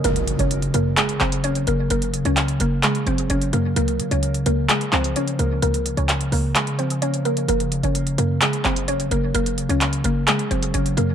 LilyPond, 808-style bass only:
\new Staff \with { instrumentName = "808-style bass" } { \clef bass \time 4/4 \key ges \lydian \tempo 4 = 129 ges,,8. ges,,8. ges,8 r8 ges,,4 ges,,8 | ges,,8. des,8. ges,,8 r8 ges,,8 ges,,8 ges,8 | des,8 des16 des,8. des,8 r8 des,8 r8 des,8 | des,8. des,8. des,8 r2 |
ges,,8. ges,,8. ges,8 r8 ges,,4 ges,,8 | ges,,8. des,8. ges,,8 r8 ges,,8 ges,,8 ges,8 | }